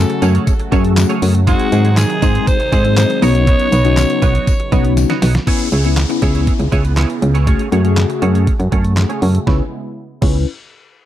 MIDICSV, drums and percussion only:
0, 0, Header, 1, 2, 480
1, 0, Start_track
1, 0, Key_signature, 4, "minor"
1, 0, Tempo, 500000
1, 1413, Time_signature, 4, 2, 24, 8
1, 10612, End_track
2, 0, Start_track
2, 0, Title_t, "Drums"
2, 93, Note_on_c, 9, 42, 56
2, 189, Note_off_c, 9, 42, 0
2, 211, Note_on_c, 9, 54, 53
2, 212, Note_on_c, 9, 42, 82
2, 307, Note_off_c, 9, 54, 0
2, 308, Note_off_c, 9, 42, 0
2, 335, Note_on_c, 9, 42, 61
2, 431, Note_off_c, 9, 42, 0
2, 452, Note_on_c, 9, 54, 52
2, 454, Note_on_c, 9, 36, 104
2, 454, Note_on_c, 9, 42, 82
2, 548, Note_off_c, 9, 54, 0
2, 550, Note_off_c, 9, 36, 0
2, 550, Note_off_c, 9, 42, 0
2, 572, Note_on_c, 9, 42, 45
2, 668, Note_off_c, 9, 42, 0
2, 693, Note_on_c, 9, 36, 95
2, 693, Note_on_c, 9, 42, 71
2, 693, Note_on_c, 9, 54, 29
2, 789, Note_off_c, 9, 36, 0
2, 789, Note_off_c, 9, 42, 0
2, 789, Note_off_c, 9, 54, 0
2, 811, Note_on_c, 9, 42, 55
2, 907, Note_off_c, 9, 42, 0
2, 931, Note_on_c, 9, 38, 93
2, 932, Note_on_c, 9, 54, 95
2, 933, Note_on_c, 9, 39, 116
2, 933, Note_on_c, 9, 42, 99
2, 1027, Note_off_c, 9, 38, 0
2, 1028, Note_off_c, 9, 54, 0
2, 1029, Note_off_c, 9, 39, 0
2, 1029, Note_off_c, 9, 42, 0
2, 1053, Note_on_c, 9, 42, 55
2, 1149, Note_off_c, 9, 42, 0
2, 1173, Note_on_c, 9, 54, 56
2, 1174, Note_on_c, 9, 46, 85
2, 1269, Note_off_c, 9, 54, 0
2, 1270, Note_off_c, 9, 46, 0
2, 1295, Note_on_c, 9, 42, 60
2, 1391, Note_off_c, 9, 42, 0
2, 1412, Note_on_c, 9, 54, 37
2, 1414, Note_on_c, 9, 36, 112
2, 1415, Note_on_c, 9, 42, 98
2, 1508, Note_off_c, 9, 54, 0
2, 1510, Note_off_c, 9, 36, 0
2, 1511, Note_off_c, 9, 42, 0
2, 1532, Note_on_c, 9, 42, 58
2, 1628, Note_off_c, 9, 42, 0
2, 1651, Note_on_c, 9, 54, 48
2, 1654, Note_on_c, 9, 42, 84
2, 1747, Note_off_c, 9, 54, 0
2, 1750, Note_off_c, 9, 42, 0
2, 1774, Note_on_c, 9, 42, 53
2, 1870, Note_off_c, 9, 42, 0
2, 1891, Note_on_c, 9, 54, 90
2, 1893, Note_on_c, 9, 38, 98
2, 1895, Note_on_c, 9, 39, 123
2, 1896, Note_on_c, 9, 42, 97
2, 1987, Note_off_c, 9, 54, 0
2, 1989, Note_off_c, 9, 38, 0
2, 1991, Note_off_c, 9, 39, 0
2, 1992, Note_off_c, 9, 42, 0
2, 2015, Note_on_c, 9, 42, 57
2, 2111, Note_off_c, 9, 42, 0
2, 2134, Note_on_c, 9, 54, 52
2, 2135, Note_on_c, 9, 42, 82
2, 2136, Note_on_c, 9, 36, 105
2, 2230, Note_off_c, 9, 54, 0
2, 2231, Note_off_c, 9, 42, 0
2, 2232, Note_off_c, 9, 36, 0
2, 2257, Note_on_c, 9, 42, 56
2, 2353, Note_off_c, 9, 42, 0
2, 2374, Note_on_c, 9, 54, 52
2, 2375, Note_on_c, 9, 36, 105
2, 2375, Note_on_c, 9, 42, 81
2, 2470, Note_off_c, 9, 54, 0
2, 2471, Note_off_c, 9, 36, 0
2, 2471, Note_off_c, 9, 42, 0
2, 2494, Note_on_c, 9, 42, 48
2, 2590, Note_off_c, 9, 42, 0
2, 2615, Note_on_c, 9, 36, 92
2, 2615, Note_on_c, 9, 54, 30
2, 2616, Note_on_c, 9, 42, 72
2, 2711, Note_off_c, 9, 36, 0
2, 2711, Note_off_c, 9, 54, 0
2, 2712, Note_off_c, 9, 42, 0
2, 2733, Note_on_c, 9, 42, 53
2, 2829, Note_off_c, 9, 42, 0
2, 2853, Note_on_c, 9, 38, 94
2, 2854, Note_on_c, 9, 42, 98
2, 2854, Note_on_c, 9, 54, 89
2, 2855, Note_on_c, 9, 39, 113
2, 2949, Note_off_c, 9, 38, 0
2, 2950, Note_off_c, 9, 42, 0
2, 2950, Note_off_c, 9, 54, 0
2, 2951, Note_off_c, 9, 39, 0
2, 2975, Note_on_c, 9, 42, 54
2, 3071, Note_off_c, 9, 42, 0
2, 3094, Note_on_c, 9, 54, 57
2, 3095, Note_on_c, 9, 46, 82
2, 3190, Note_off_c, 9, 54, 0
2, 3191, Note_off_c, 9, 46, 0
2, 3216, Note_on_c, 9, 42, 61
2, 3312, Note_off_c, 9, 42, 0
2, 3334, Note_on_c, 9, 36, 113
2, 3334, Note_on_c, 9, 42, 97
2, 3430, Note_off_c, 9, 36, 0
2, 3430, Note_off_c, 9, 42, 0
2, 3452, Note_on_c, 9, 42, 57
2, 3548, Note_off_c, 9, 42, 0
2, 3572, Note_on_c, 9, 54, 51
2, 3575, Note_on_c, 9, 42, 89
2, 3668, Note_off_c, 9, 54, 0
2, 3671, Note_off_c, 9, 42, 0
2, 3694, Note_on_c, 9, 42, 51
2, 3790, Note_off_c, 9, 42, 0
2, 3812, Note_on_c, 9, 54, 90
2, 3813, Note_on_c, 9, 38, 93
2, 3814, Note_on_c, 9, 39, 116
2, 3816, Note_on_c, 9, 42, 99
2, 3908, Note_off_c, 9, 54, 0
2, 3909, Note_off_c, 9, 38, 0
2, 3910, Note_off_c, 9, 39, 0
2, 3912, Note_off_c, 9, 42, 0
2, 3934, Note_on_c, 9, 42, 57
2, 4030, Note_off_c, 9, 42, 0
2, 4054, Note_on_c, 9, 42, 82
2, 4055, Note_on_c, 9, 36, 108
2, 4055, Note_on_c, 9, 54, 53
2, 4150, Note_off_c, 9, 42, 0
2, 4151, Note_off_c, 9, 36, 0
2, 4151, Note_off_c, 9, 54, 0
2, 4176, Note_on_c, 9, 42, 59
2, 4272, Note_off_c, 9, 42, 0
2, 4295, Note_on_c, 9, 36, 104
2, 4296, Note_on_c, 9, 42, 78
2, 4296, Note_on_c, 9, 54, 52
2, 4391, Note_off_c, 9, 36, 0
2, 4392, Note_off_c, 9, 42, 0
2, 4392, Note_off_c, 9, 54, 0
2, 4413, Note_on_c, 9, 42, 46
2, 4509, Note_off_c, 9, 42, 0
2, 4534, Note_on_c, 9, 36, 95
2, 4534, Note_on_c, 9, 42, 69
2, 4535, Note_on_c, 9, 54, 30
2, 4630, Note_off_c, 9, 36, 0
2, 4630, Note_off_c, 9, 42, 0
2, 4631, Note_off_c, 9, 54, 0
2, 4652, Note_on_c, 9, 42, 54
2, 4748, Note_off_c, 9, 42, 0
2, 4771, Note_on_c, 9, 42, 99
2, 4772, Note_on_c, 9, 38, 66
2, 4774, Note_on_c, 9, 54, 91
2, 4867, Note_off_c, 9, 42, 0
2, 4868, Note_off_c, 9, 38, 0
2, 4870, Note_off_c, 9, 54, 0
2, 4894, Note_on_c, 9, 38, 72
2, 4894, Note_on_c, 9, 42, 54
2, 4990, Note_off_c, 9, 38, 0
2, 4990, Note_off_c, 9, 42, 0
2, 5013, Note_on_c, 9, 38, 103
2, 5014, Note_on_c, 9, 46, 84
2, 5015, Note_on_c, 9, 54, 56
2, 5109, Note_off_c, 9, 38, 0
2, 5110, Note_off_c, 9, 46, 0
2, 5111, Note_off_c, 9, 54, 0
2, 5135, Note_on_c, 9, 38, 107
2, 5136, Note_on_c, 9, 42, 63
2, 5231, Note_off_c, 9, 38, 0
2, 5232, Note_off_c, 9, 42, 0
2, 5253, Note_on_c, 9, 36, 104
2, 5253, Note_on_c, 9, 42, 92
2, 5253, Note_on_c, 9, 49, 95
2, 5349, Note_off_c, 9, 36, 0
2, 5349, Note_off_c, 9, 42, 0
2, 5349, Note_off_c, 9, 49, 0
2, 5370, Note_on_c, 9, 42, 58
2, 5466, Note_off_c, 9, 42, 0
2, 5494, Note_on_c, 9, 42, 80
2, 5590, Note_off_c, 9, 42, 0
2, 5612, Note_on_c, 9, 42, 50
2, 5708, Note_off_c, 9, 42, 0
2, 5731, Note_on_c, 9, 38, 92
2, 5733, Note_on_c, 9, 39, 111
2, 5734, Note_on_c, 9, 42, 93
2, 5827, Note_off_c, 9, 38, 0
2, 5829, Note_off_c, 9, 39, 0
2, 5830, Note_off_c, 9, 42, 0
2, 5853, Note_on_c, 9, 42, 52
2, 5949, Note_off_c, 9, 42, 0
2, 5972, Note_on_c, 9, 42, 76
2, 5974, Note_on_c, 9, 36, 94
2, 6068, Note_off_c, 9, 42, 0
2, 6070, Note_off_c, 9, 36, 0
2, 6096, Note_on_c, 9, 42, 56
2, 6192, Note_off_c, 9, 42, 0
2, 6214, Note_on_c, 9, 36, 97
2, 6214, Note_on_c, 9, 42, 76
2, 6310, Note_off_c, 9, 36, 0
2, 6310, Note_off_c, 9, 42, 0
2, 6333, Note_on_c, 9, 42, 43
2, 6429, Note_off_c, 9, 42, 0
2, 6454, Note_on_c, 9, 36, 86
2, 6455, Note_on_c, 9, 42, 66
2, 6550, Note_off_c, 9, 36, 0
2, 6551, Note_off_c, 9, 42, 0
2, 6573, Note_on_c, 9, 42, 50
2, 6669, Note_off_c, 9, 42, 0
2, 6692, Note_on_c, 9, 38, 87
2, 6693, Note_on_c, 9, 42, 93
2, 6694, Note_on_c, 9, 39, 113
2, 6788, Note_off_c, 9, 38, 0
2, 6789, Note_off_c, 9, 42, 0
2, 6790, Note_off_c, 9, 39, 0
2, 6814, Note_on_c, 9, 42, 48
2, 6910, Note_off_c, 9, 42, 0
2, 6934, Note_on_c, 9, 42, 77
2, 7030, Note_off_c, 9, 42, 0
2, 7056, Note_on_c, 9, 42, 58
2, 7152, Note_off_c, 9, 42, 0
2, 7173, Note_on_c, 9, 36, 102
2, 7174, Note_on_c, 9, 42, 86
2, 7269, Note_off_c, 9, 36, 0
2, 7270, Note_off_c, 9, 42, 0
2, 7290, Note_on_c, 9, 42, 59
2, 7386, Note_off_c, 9, 42, 0
2, 7414, Note_on_c, 9, 42, 82
2, 7510, Note_off_c, 9, 42, 0
2, 7533, Note_on_c, 9, 42, 51
2, 7629, Note_off_c, 9, 42, 0
2, 7651, Note_on_c, 9, 38, 87
2, 7653, Note_on_c, 9, 39, 111
2, 7654, Note_on_c, 9, 42, 95
2, 7747, Note_off_c, 9, 38, 0
2, 7749, Note_off_c, 9, 39, 0
2, 7750, Note_off_c, 9, 42, 0
2, 7774, Note_on_c, 9, 42, 53
2, 7870, Note_off_c, 9, 42, 0
2, 7892, Note_on_c, 9, 42, 79
2, 7988, Note_off_c, 9, 42, 0
2, 8017, Note_on_c, 9, 42, 54
2, 8113, Note_off_c, 9, 42, 0
2, 8134, Note_on_c, 9, 36, 99
2, 8134, Note_on_c, 9, 42, 74
2, 8230, Note_off_c, 9, 36, 0
2, 8230, Note_off_c, 9, 42, 0
2, 8253, Note_on_c, 9, 42, 44
2, 8349, Note_off_c, 9, 42, 0
2, 8373, Note_on_c, 9, 36, 91
2, 8373, Note_on_c, 9, 42, 68
2, 8469, Note_off_c, 9, 36, 0
2, 8469, Note_off_c, 9, 42, 0
2, 8491, Note_on_c, 9, 42, 51
2, 8587, Note_off_c, 9, 42, 0
2, 8610, Note_on_c, 9, 38, 91
2, 8611, Note_on_c, 9, 42, 98
2, 8612, Note_on_c, 9, 39, 108
2, 8706, Note_off_c, 9, 38, 0
2, 8707, Note_off_c, 9, 42, 0
2, 8708, Note_off_c, 9, 39, 0
2, 8734, Note_on_c, 9, 42, 51
2, 8830, Note_off_c, 9, 42, 0
2, 8853, Note_on_c, 9, 46, 81
2, 8949, Note_off_c, 9, 46, 0
2, 8974, Note_on_c, 9, 42, 60
2, 9070, Note_off_c, 9, 42, 0
2, 9092, Note_on_c, 9, 36, 105
2, 9092, Note_on_c, 9, 38, 87
2, 9188, Note_off_c, 9, 36, 0
2, 9188, Note_off_c, 9, 38, 0
2, 9811, Note_on_c, 9, 49, 89
2, 9812, Note_on_c, 9, 36, 113
2, 9907, Note_off_c, 9, 49, 0
2, 9908, Note_off_c, 9, 36, 0
2, 10612, End_track
0, 0, End_of_file